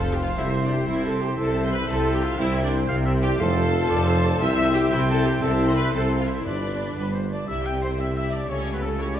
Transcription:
Already playing: F1 F2 C4 F4 A4 C5 F5 A5 C6
0.12 G4 G5
0.21 F4 F5
0.36 C2 C3 C4 E4 C5 E5
0.63 D4 D5
0.71 G4 G5
0.87 C2 C3 C4 E4 C5 E5
1.03 A4 A5
1.20 G4 G5
1.36 C2 C3 C4 E4 A4 C5 E5 A5 C6
1.63 C5 C6
1.71 B4 B5
1.86 C2 C3 C4 E4 A4 C5 E5 A5
2.12 G4 G5
2.21 F4 F5
2.38 C2 C3 C4 E4 C5 E5 G5
2.63 D4 D5
2.88 C2 C3 F5
3.05 E5
3.22 G4 D5 G5
3.38 F1 F2 C4 F4 A4 C5 F5 A5 C6
3.90 F1 F2 D5
4.08 C5
4.26 D5
4.40 C2 C3 C4 E4 C5 E5 E6
4.74 G4 G5
4.91 C2 C3 C4 E4 C5 E5 G5
5.08 A4 A5
5.24 G4 G5
5.41 C2 C3 C4 E4 A4 C5 E5 A5 C6
5.67 C5 C6
5.74 B4 B5
5.92 C2 C3 C4 E4 A4 C5 A5
6.17 F4 F5
6.25 E4 E5
6.42 G1 G2 B3 D4 B4 D5 B5
6.95 G1 G2 G3 B3 B4
7.12 C4 C5
7.22 B3
7.30 A3 D4 D5
7.46 C2 C3 G3 E4 G4 E5
7.64 G4 G5
7.81 C4 C5
7.97 G3 E4 G4 E5
8.14 E4 E5
8.32 D4 D5
8.48 C#2 C#3 A3 C#4 G4 A4 C#5
8.74 B3 B4
8.82 A3 A4
8.99 A3 C#4 E4 G4 C#5
9.15 D5

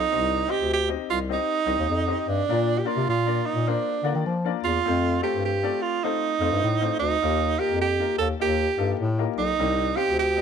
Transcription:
Already playing: D#4
0.12 C2 C3 C4 D#4 G4 C5 D#5
0.48 C4 D#4 G4 C5 D#5
0.60 D2
0.73 G4
0.88 C4 D#4 G4 C5 D#5
1.08 C2 F4
1.29 C4 D#4 G4 C5 D#5
1.66 C2 C4 D#4 G4 C5 D#5
1.78 D#2
1.89 F2
2.07 C4 D#4 G4 C5 D#5
2.19 D#4
2.26 G2 D4
2.48 A#2 A#3 D4 F4 A#4 D5
2.79 G4
2.84 A#3 D4 F4 A#4 D5
2.97 C3
3.08 A#2 F4
3.26 A#3 D4 F4 A#4 D5
3.46 D#4
3.55 A#2
3.67 A#3 D4 F4 A#4 C5
4.03 D3 A#3 D4 F4 A#4 D5
4.15 D#3
4.26 F3
4.44 A#3 D4 F4 A#4 D5
4.63 E2 F4
4.85 F2 A3 C4 F4 A4 C5
5.22 A3 C4 F4 G4 A4 C5
5.34 G2
5.45 G4
5.63 A3 C4 F4 A4 D5
5.82 F4
6.04 A3 C4 D#4 F4 A4 C5
6.40 F2 A3 C4 F4 A4 C5
6.52 G2
6.63 A2
6.80 A3 C4 F4 A4 C5
6.99 D2 D#4
7.22 D#2 D#3 A#3 D#4 F4 G4 A#4
7.58 A#3 D#4 F4 G4 A#4
7.70 F2
7.82 G4
7.99 A#3 D#4 F4 G4 A#4
8.18 D#2 A4
8.40 D#2 A#3 D#4 F4 G4 A#4
8.77 G2 A#3 D#4 F4 G4 A4
9.00 A2
9.18 A#3 D#4 F4 G4 A#4
9.36 B1 D#4
9.59 C2 C3 C4 D#4 G4 C5 D#5
9.96 C4 D#4 G4 C5 F5
10.07 D2
10.19 G4
10.37 C4 D#4 G4 C5 D#5

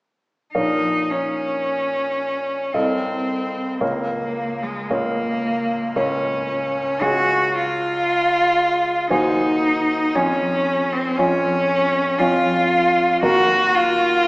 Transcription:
0.54 A#1 D#4 A#4 C#5 F5
1.11 C#4
2.74 C2 C4 A4 D#5 F5
3.81 C#2 A#3 A#4 C#5 F5
4.63 G#3
4.90 C#2 A#3 A#4 C#5 F5
5.96 C#2 C#4 A#4 C#5 F5
7.01 C#2 F#4 G#4 C#5 G#5
7.54 F4
9.10 D#2 D#4 F#4 C5 G#5
10.15 F2 C#4 F4 C#5 G#5
10.93 C4
11.18 F2 C#4 F4 C#5 G#5
12.19 F2 F4 C#5 G#5
13.22 D#2 F#4 A#4 A#5
13.75 F4

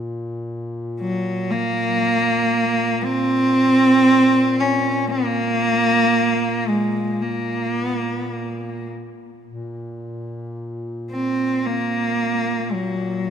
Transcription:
Already playing: A#2
1.00 F#3
1.51 A#3
3.05 C4
4.59 C#4
5.10 A#3
6.68 G#3
7.21 A#3
7.81 B3
7.97 A#3
8.15 B3
8.31 A#3
9.46 A#2
11.11 C4
11.65 A#3
12.72 F#3

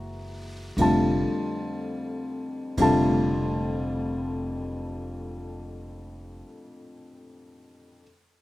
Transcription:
Already playing: F#1 E3 G#3 A#3 F#4 E5 A#5
0.77 F1 F2 D3 G3 A3 F4, kick, ride
0.82 A5
2.77 F1 F2 D3 G3 A3 F4, kick, ride
2.82 A5

